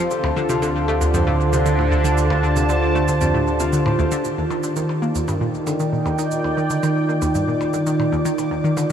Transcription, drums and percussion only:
0.11 shaker medium
0.24 percussion blips medium
0.49 shaker medium
0.62 shaker soft
1.01 shaker medium
1.14 shaker soft
1.53 shaker medium
1.66 shaker soft
2.05 shaker medium
2.18 shaker medium
2.30 percussion blips medium
2.56 shaker medium
2.69 shaker medium
3.08 shaker medium
3.21 shaker soft
3.60 shaker medium
3.73 shaker medium
3.86 percussion blips medium
4.12 shaker medium
4.25 shaker soft
4.50 percussion blips soft
4.63 shaker medium
4.76 shaker soft
4.89 percussion blips soft
5.15 shaker medium
5.28 percussion blips soft
5.28 shaker soft
5.67 percussion blips soft
5.67 shaker medium
5.80 shaker soft
6.06 percussion blips soft
6.19 shaker medium
6.31 shaker soft
6.44 percussion blips soft
6.70 shaker medium
6.83 percussion blips soft
6.83 shaker soft
7.22 percussion blips soft
7.22 shaker medium
7.35 shaker soft
7.61 percussion blips soft
7.74 shaker medium
7.87 shaker soft
8.00 percussion blips soft
8.25 shaker medium
8.38 percussion blips soft
8.38 shaker soft
8.77 percussion blips soft
8.77 shaker medium

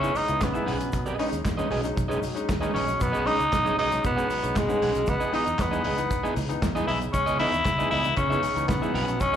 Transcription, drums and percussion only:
0.04 shaker medium
0.15 open hi-hat medium
0.15 muted conga soft
0.15 low conga medium
0.15 shaker medium
0.28 closed hi-hat soft
0.28 shaker medium
0.41 kick loud
0.41 snare loud
0.41 clap loud
0.41 closed hi-hat medium
0.41 high conga medium
0.41 shaker medium
0.55 shaker medium
0.67 open hi-hat medium
0.67 high conga medium
0.80 closed hi-hat medium
0.80 shaker medium
0.92 kick medium
0.92 closed hi-hat medium
0.92 shaker medium
1.06 shaker medium
1.19 open hi-hat medium
1.33 closed hi-hat soft
1.33 shaker medium
1.45 kick loud
1.45 snare medium
1.45 clap medium
1.45 closed hi-hat medium
1.45 high conga medium
1.45 shaker medium
1.59 shaker medium
1.71 open hi-hat medium
1.71 muted conga medium
1.71 low conga medium
1.84 closed hi-hat soft
1.84 shaker medium
1.97 kick loud
1.97 closed hi-hat medium
1.97 shaker medium
2.11 shaker medium
2.23 open hi-hat medium
2.23 muted conga soft
2.23 low conga medium
2.23 shaker medium
2.36 closed hi-hat soft
2.36 shaker soft
2.49 kick loud
2.49 snare loud
2.49 clap medium
2.49 closed hi-hat medium
2.49 high conga loud
2.49 shaker medium
2.63 shaker medium
2.75 open hi-hat medium
2.75 high conga medium
2.88 closed hi-hat soft
2.88 shaker medium
3.00 kick medium
3.00 closed hi-hat medium
3.00 muted conga soft
3.00 shaker medium
3.14 shaker medium
3.27 open hi-hat medium
3.40 closed hi-hat soft
3.40 shaker medium
3.53 kick loud
3.53 snare loud
3.53 clap medium
3.53 closed hi-hat medium
3.53 high conga medium
3.53 shaker medium
3.66 shaker medium
3.79 open hi-hat medium
3.79 muted conga medium
3.92 closed hi-hat soft
3.92 low conga medium
3.92 shaker medium
4.04 kick loud
4.04 closed hi-hat medium
4.04 shaker medium
4.18 shaker medium
4.30 open hi-hat medium
4.30 muted conga medium
4.30 low conga medium
4.30 shaker medium
4.43 closed hi-hat medium
4.43 shaker medium
4.56 kick loud
4.56 snare loud
4.56 clap medium
4.56 closed hi-hat medium
4.56 high conga medium
4.56 shaker medium
4.70 shaker medium
4.82 open hi-hat medium
4.82 high conga medium
4.95 closed hi-hat soft
4.95 shaker medium
5.06 kick medium
5.06 closed hi-hat medium
5.06 muted conga soft
5.06 shaker medium
5.21 shaker medium
5.34 open hi-hat medium
5.47 closed hi-hat soft
5.47 shaker medium
5.59 kick loud
5.59 snare loud
5.59 clap medium
5.59 closed hi-hat medium
5.59 high conga medium
5.59 shaker medium
5.73 shaker medium
5.84 open hi-hat medium
5.84 muted conga medium
5.84 low conga medium
5.98 closed hi-hat soft
5.98 shaker medium
6.11 kick loud
6.11 closed hi-hat medium
6.11 shaker medium
6.25 shaker medium
6.36 open hi-hat medium
6.36 muted conga medium
6.36 low conga medium
6.36 shaker medium
6.50 closed hi-hat medium
6.50 shaker soft
6.62 kick loud
6.62 snare loud
6.62 clap medium
6.62 closed hi-hat medium
6.62 high conga medium
6.62 shaker medium
6.77 shaker medium
6.88 open hi-hat medium
6.88 high conga medium
7.02 closed hi-hat soft
7.02 shaker soft
7.14 kick medium
7.14 closed hi-hat medium
7.14 shaker medium
7.27 shaker medium
7.39 open hi-hat medium
7.52 closed hi-hat medium
7.52 shaker medium
7.65 kick loud
7.65 snare loud
7.65 clap medium
7.65 closed hi-hat medium
7.65 high conga medium
7.65 shaker medium
7.80 shaker medium
7.91 open hi-hat medium
7.91 muted conga medium
8.04 closed hi-hat soft
8.04 low conga medium
8.04 shaker medium
8.16 kick loud
8.16 closed hi-hat medium
8.16 shaker medium
8.32 shaker medium
8.43 open hi-hat medium
8.43 muted conga medium
8.43 low conga medium
8.43 shaker medium
8.56 closed hi-hat medium
8.56 shaker medium
8.69 kick loud
8.69 snare loud
8.69 clap medium
8.69 closed hi-hat medium
8.69 high conga loud
8.69 shaker medium
8.83 shaker medium
8.94 open hi-hat medium
8.94 high conga medium
9.08 closed hi-hat medium
9.08 shaker medium
9.20 kick loud
9.20 closed hi-hat medium
9.20 muted conga soft
9.20 shaker medium

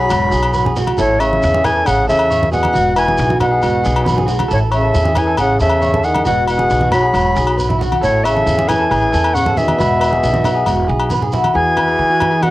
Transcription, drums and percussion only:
0.10 low agogo medium
0.10 shekere medium
0.32 shekere medium
0.43 low agogo medium
0.54 shekere medium
0.66 high conga medium
0.66 low conga medium
0.76 low conga medium
0.76 shekere medium
0.87 high conga medium
0.87 low agogo medium
0.98 shekere loud
1.20 low agogo medium
1.20 shekere medium
1.33 high conga medium
1.43 shekere loud
1.54 high conga medium
1.64 low conga medium
1.64 low agogo medium
1.64 shekere medium
1.86 low agogo medium
1.86 shekere medium
2.10 shekere medium
2.19 low agogo medium
2.31 shekere medium
2.43 high conga medium
2.43 low conga medium
2.53 low conga medium
2.53 shekere medium
2.63 high conga medium
2.63 low agogo medium
2.75 shekere medium
2.96 low agogo medium
2.96 shekere medium
3.08 high conga medium
3.18 shekere loud
3.30 high conga medium
3.40 low conga medium
3.40 low agogo medium
3.40 shekere medium
3.62 low agogo medium
3.62 shekere medium
3.85 shekere medium
3.96 low agogo medium
4.06 high conga medium
4.06 shekere medium
4.18 high conga medium
4.18 low conga medium
4.28 low conga medium
4.28 shekere medium
4.39 high conga medium
4.39 low agogo medium
4.51 shekere medium
4.72 low agogo medium
4.72 shekere medium
4.95 shekere medium
5.05 high conga medium
5.15 low conga medium
5.15 low agogo medium
5.15 shekere medium
5.37 low agogo medium
5.37 shekere medium
5.60 shekere medium
5.70 low agogo medium
5.82 shekere medium
5.94 high conga medium
5.94 low conga medium
6.04 shekere medium
6.15 high conga medium
6.15 low agogo medium
6.26 shekere medium
6.48 low agogo medium
6.48 shekere medium
6.59 high conga medium
6.70 shekere medium
6.81 high conga medium
6.92 low conga medium
6.92 low agogo medium
6.92 shekere medium
7.14 low agogo medium
7.14 shekere medium
7.36 shekere medium
7.47 low agogo medium
7.59 shekere medium
7.70 high conga medium
7.70 low conga medium
7.81 low conga medium
7.81 shekere medium
7.92 high conga medium
7.92 low agogo medium
8.03 shekere loud
8.25 low agogo medium
8.25 shekere medium
8.37 high conga medium
8.47 shekere medium
8.59 high conga medium
8.69 low conga medium
8.69 low agogo medium
8.69 shekere medium
8.91 low agogo medium
8.91 shekere medium
9.13 shekere medium
9.24 low agogo medium
9.36 shekere loud
9.46 high conga medium
9.46 low conga medium
9.57 low conga medium
9.57 shekere medium
9.68 high conga medium
9.68 low agogo medium
9.80 shekere medium
10.01 low agogo medium
10.01 shekere medium
10.13 high conga medium
10.23 shekere medium
10.34 high conga medium
10.44 low conga medium
10.44 low agogo medium
10.44 shekere medium
10.66 low agogo medium
10.66 shekere medium
11.00 low agogo medium
11.10 high conga medium
11.10 shekere medium
11.22 low conga medium
11.32 low conga medium
11.32 shekere medium
11.44 high conga medium
11.44 low agogo medium
11.77 high conga medium
11.77 low agogo medium
12.20 low conga medium
12.20 low agogo medium
12.42 high conga medium
12.42 low agogo medium

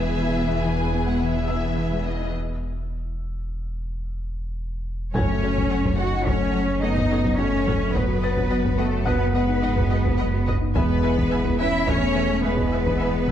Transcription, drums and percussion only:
5.15 taiko medium
5.57 taiko medium
5.85 taiko medium
6.27 taiko medium
6.97 taiko medium
7.25 taiko medium
7.67 taiko medium
7.95 taiko medium
8.37 taiko medium
8.65 taiko medium
9.07 taiko medium
9.78 taiko medium
10.06 taiko medium
10.48 taiko medium
10.76 taiko medium
11.18 taiko medium
11.46 taiko medium
11.88 taiko medium
12.58 taiko medium
12.86 taiko medium
13.28 taiko medium

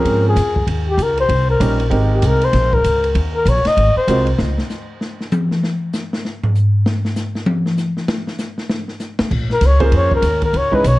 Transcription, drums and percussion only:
0.05 ride medium
0.37 snare soft
0.37 hi-hat pedal medium
0.37 ride medium
0.56 kick medium
0.67 ride medium
0.99 hi-hat pedal medium
0.99 ride medium
1.18 ride soft
1.29 ride medium
1.61 hi-hat pedal medium
1.61 ride medium
1.80 ride medium
1.91 ride medium
2.22 hi-hat pedal medium
2.22 ride medium
2.41 ride medium
2.53 snare soft
2.53 ride medium
2.73 kick medium
2.84 hi-hat pedal medium
2.84 ride medium
3.04 ride soft
3.15 ride medium
3.46 hi-hat pedal medium
3.46 ride medium
3.65 snare medium
3.65 ride medium
3.77 ride medium
4.08 hi-hat pedal medium
4.08 ride medium
4.27 ride medium
4.38 snare medium
4.58 snare medium
4.70 snare soft
4.70 hi-hat pedal medium
5.01 snare soft
5.21 snare soft
5.32 hi-hat pedal medium
5.32 high tom loud
5.51 snare soft
5.63 snare medium
5.93 snare medium
5.93 hi-hat pedal medium
6.13 snare medium
6.25 snare soft
6.44 floor tom loud
6.55 hi-hat pedal medium
6.86 snare loud
7.05 snare medium
7.16 snare medium
7.16 hi-hat pedal medium
7.35 snare soft
7.46 high tom loud
7.66 snare soft
7.77 snare soft
7.77 hi-hat pedal medium
7.97 snare soft
8.08 snare loud
8.27 snare medium
8.38 snare medium
8.38 hi-hat pedal medium
8.58 snare soft
8.70 snare medium
8.88 snare soft
9.00 snare soft
9.00 hi-hat pedal medium
9.19 snare loud
9.31 kick medium
9.31 crash medium
9.50 snare soft
9.61 snare soft
9.61 hi-hat pedal medium
9.61 ride medium
9.80 kick medium
9.80 ride soft
9.92 ride medium
10.12 kick medium
10.22 snare soft
10.22 hi-hat pedal medium
10.22 ride medium
10.42 kick medium
10.42 ride medium
10.54 ride medium
10.73 kick medium
10.84 hi-hat pedal medium
10.84 ride medium

